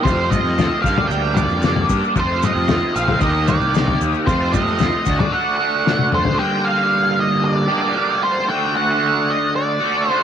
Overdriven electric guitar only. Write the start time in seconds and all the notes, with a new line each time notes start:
0.03 F2 C3 F3 A3 C4 F4
0.30 F3 A3 C4 F4
0.55 F3 A3 C4 F4
0.82 G2 D3 G3 A#3 D4 G4
1.09 G2 D3 G3 A#3 D4 G4
1.35 G3 A#3 D4 G4
1.62 G3 A#3 D4 G4
2.15 F2 C3 F3 A3 C4 F4
2.41 F3 A3 C4 F4
2.68 F3 A3 C4 F4
2.94 F3 A3 C4 F4
3.19 D#3 A#3 D#4 G4
3.47 A#3 D#4 G4
3.73 D#3 A#3 D#4 G4
4.26 F2 C3 F3 A3 C4 F4
4.53 F3 A3 C4 F4
4.78 F3 A3 C4 F4
5.05 D3 A3 D4 F#4
5.31 D3 A3 D4 F#4
5.59 A3 D4 F#4
5.85 D3 A3 D4
5.89 F#4
6.38 G2 D3 G3 A#3 D4 G4
7.68 D3 G3 A#3 D4 G4
7.72 G2
7.95 G2 D3 G3 A#3 D4 G4
8.48 D3 A3 D4 F#4
9.80 A3 D4 F#4
9.84 D3
10.07 D3 A3 D4 F#4